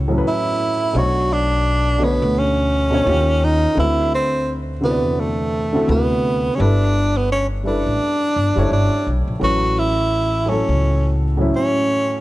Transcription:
Already playing: upright bass C#2, upright piano A2 F#3 C#4 B4 C#5
0.08 upright piano A2 F#3 C#4 A4
0.18 upright piano B4
0.28 tenor saxophone E4
0.93 upright bass B1, upright piano B2 A3 D4 C#5
0.98 tenor saxophone F#4
1.33 tenor saxophone D4
1.98 upright piano B2 D3 A3 C#5
2.04 tenor saxophone B3
2.22 upright bass D2
2.39 tenor saxophone C#4
2.90 upright piano B2 A3 D4 C#5
3.04 upright bass D#2, upright piano D#3 C#4 F4 G4
3.44 tenor saxophone D#4
3.75 upright bass D2, upright piano D3 C4 E4 F#4 B4
3.79 tenor saxophone E4
4.15 tenor saxophone C4
4.81 upright piano C3 D3 E4 F#4 C5
4.85 tenor saxophone B3
4.91 upright piano D5
5.04 upright bass E2
5.20 tenor saxophone A3
5.73 upright piano D3 C4 E4 F#4 A4
5.87 upright bass D2, upright piano C3 D3 E4 F#4 B4, tenor saxophone B3
6.55 upright piano G3 E4, tenor saxophone C#4
6.60 upright bass G1, tenor saxophone D4, upright piano A4 B4
7.17 tenor saxophone B3
7.32 tenor saxophone C#4
7.64 upright piano G3 E4 A4 B4, tenor saxophone D4
7.86 upright bass A1
8.36 upright bass G1
8.55 upright bass F#1, upright piano G3 E4 A4 C#5
8.71 upright bass G1, tenor saxophone D4
9.07 upright bass B1
9.28 upright bass A#1
9.40 upright bass A1, upright piano A2 F#3 C#4 B4
9.44 tenor saxophone F#4
9.79 tenor saxophone E4
10.46 upright piano A2 F#3 C#4 A4, tenor saxophone C#4
10.69 upright bass C#2
11.37 upright piano A2 F#3 C#4 E4
11.56 tenor saxophone C#4

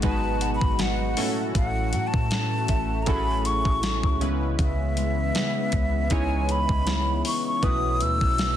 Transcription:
Already playing: steel-string acoustic guitar G#2, analog synth pad B2 G#3 F#4, synth keys G#3 B3 D#4 F#4 B4
0.02 808-style bass G#1, steel-string acoustic guitar F#3 B3 D#4, synth keys G#3 B3 D#4 F#4 B4, flute A5, kick, closed hi-hat
0.41 synth bell F#5, closed hi-hat
0.56 flute B5
0.61 808-style bass G#1, kick
0.79 steel-string acoustic guitar F#3 B3 D#4, flute F#5, snare, closed hi-hat
1.17 steel-string acoustic guitar A2, analog synth pad E3 A3, synth keys A3 C#4 E4 F#4 A4, open hi-hat
1.55 808-style bass A1, steel-string acoustic guitar A2, flute F#5, kick, closed hi-hat
1.93 808-style bass A2, steel-string acoustic guitar F#3, closed hi-hat
2.07 flute A5
2.14 808-style bass A2, kick
2.31 steel-string acoustic guitar C#4, snare, closed hi-hat
2.68 808-style bass A1, synth bell E5, kick, closed hi-hat
3.02 synth keys G#4, flute A#5
3.06 808-style bass A1, steel-string acoustic guitar F#3 C#4 E4, synth keys C#4 E4 F#4 A4, flute B5, kick, closed hi-hat
3.45 flute C#6, closed hi-hat
3.65 808-style bass A1, kick
3.83 steel-string acoustic guitar F#3 C#4 E4, snare, closed hi-hat
4.03 808-style bass C#2, kick
4.21 steel-string acoustic guitar C#3, analog synth pad C#3 E3 B3, synth keys G#3 B3 C#4 E4 B4, closed hi-hat
4.59 808-style bass C#2, steel-string acoustic guitar C#3, flute E5, kick, closed hi-hat
4.97 steel-string acoustic guitar G#3, closed hi-hat
5.35 steel-string acoustic guitar B3, snare, closed hi-hat
5.72 808-style bass C#2, kick, closed hi-hat
6.10 808-style bass C#2, synth keys G#3 C#4 D#4 E4 C#5, steel-string acoustic guitar G#3 B3 E4, flute G#5, kick, closed hi-hat
6.49 flute B5, closed hi-hat
6.69 808-style bass C#2, kick
6.87 steel-string acoustic guitar G#3 B3 E4, snare, closed hi-hat
7.25 flute C#6, open hi-hat
7.47 flute C#6
7.62 808-style bass B1, analog synth pad B2 A3, steel-string acoustic guitar B2, synth keys A3 C#4 E4 F#4 B4, synth bell B4, flute D#6, kick, closed hi-hat
8.00 808-style bass D#2, steel-string acoustic guitar F#3, flute E6, closed hi-hat
8.21 808-style bass B1, kick
8.38 steel-string acoustic guitar A3, snare, closed hi-hat

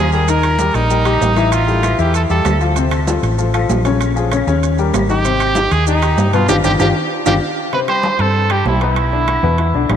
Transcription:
Already playing: fingered electric bass D#2, trumpet G#4
0.12 grand piano G3 G4 A#4, trumpet G#4, maracas
0.28 grand piano D#3 D#4 D#5, trumpet A#4, high conga, high timbale, maracas
0.43 high conga, high timbale, claves, maracas
0.59 grand piano G3 G4 A#4, high conga, low timbale, maracas
0.74 fingered electric bass A#1, trumpet D#4, high timbale, maracas
0.90 grand piano G3 G4 A#4, high conga, maracas
1.05 grand piano G3 G4 A#4, high conga, high timbale, claves, maracas
1.21 fingered electric bass A1, high conga, low timbale, maracas
1.36 grand piano E3 E4 E5, high conga, high timbale, maracas
1.52 trumpet F4, high conga, high timbale, claves, maracas
1.67 grand piano G3 G4 A4, high conga, maracas
1.83 grand piano E3 E4 E5, high conga, high timbale, low timbale, claves, maracas
1.98 fingered electric bass E2, grand piano E3 E4 E5, trumpet G4, high conga, maracas
2.14 trumpet A4, high conga, high timbale, maracas
2.30 fingered electric bass E2, grand piano G3 G4 A4, trumpet A4, high conga, maracas
2.45 fingered electric bass D2, high conga, high timbale, low timbale, claves, maracas
2.61 grand piano F3 F4 A4, maracas
2.76 grand piano C3 C4 C5, high conga, high timbale, maracas
2.91 high conga, high timbale, claves, maracas
3.07 grand piano F3 F4 A4, high conga, low timbale, maracas
3.23 fingered electric bass A1, high timbale, maracas
3.38 grand piano F3 F4 A4, high conga, maracas
3.54 grand piano F3 F4 A4, high conga, high timbale, claves, maracas
3.69 fingered electric bass A#1, high conga, low timbale, maracas
3.85 grand piano C#3 C#4 C#5, high conga, high timbale, maracas
4.00 high conga, high timbale, claves, maracas
4.16 grand piano F3 F4 G#4, high conga, maracas
4.31 grand piano C#3 C#4 C#5, high conga, high timbale, low timbale, claves, maracas
4.47 fingered electric bass D#2, grand piano C#3 C#4 C#5, high conga, maracas
4.63 high conga, high timbale, maracas
4.78 grand piano G3 G4 A#4, high conga, maracas
4.94 fingered electric bass G#1, high conga, high timbale, low timbale, claves, maracas
5.09 grand piano D#3 D#4 G4, trumpet G4, high conga, maracas
5.25 grand piano C3 C4 C5, high conga, high timbale, maracas
5.40 high conga, high timbale, claves, maracas
5.55 grand piano D#3 D#4 G4, high conga, low timbale, maracas
5.71 fingered electric bass D#2, trumpet G#4, high timbale, maracas
5.87 grand piano D#3 D#4 G4, trumpet D#4, high conga, maracas
6.02 grand piano D#3 D#4 G4, high conga, high timbale, claves, maracas
6.18 fingered electric bass G2, high conga, low timbale, maracas
6.33 grand piano B2 B3 B4, trumpet F4, high conga, high timbale, maracas
6.49 fingered electric bass G1, grand piano D4 F4 G4, trumpet G4, low conga, high timbale, claves, maracas
6.64 fingered electric bass G1, grand piano D4 F4 G4, trumpet G4, low conga, high timbale, claves, maracas
6.79 fingered electric bass G1, grand piano D4 F4 G4, trumpet G4, low conga, high timbale, claves, maracas
7.26 fingered electric bass G1, grand piano D4 F4 G4, trumpet G4, low conga, high timbale, claves, maracas
7.73 grand piano C3 C4 C5, trumpet B4, high conga, high timbale
7.88 grand piano G3 G4 G5, trumpet C5, high conga, high timbale, claves
8.03 high conga, low timbale
8.19 fingered electric bass G2, grand piano C4 C5 C6, trumpet A4, high timbale
8.35 high conga
8.50 grand piano G3 G4 G5, trumpet G4, high conga, high timbale, claves
8.65 fingered electric bass B1, trumpet E4, high conga, low timbale
8.81 grand piano B3 B4 B5, trumpet E4, high conga, high timbale
8.96 high conga, high timbale, claves
9.12 grand piano D3 D4 D5, high conga
9.28 high conga, high timbale, low timbale, claves
9.43 fingered electric bass E2, grand piano B2 B3 B4, high conga
9.58 grand piano E3 E4 E5, high conga, high timbale
9.74 fingered electric bass B1, grand piano D3 D4 D5, high conga
9.89 fingered electric bass A1, high conga, high timbale, low timbale, claves

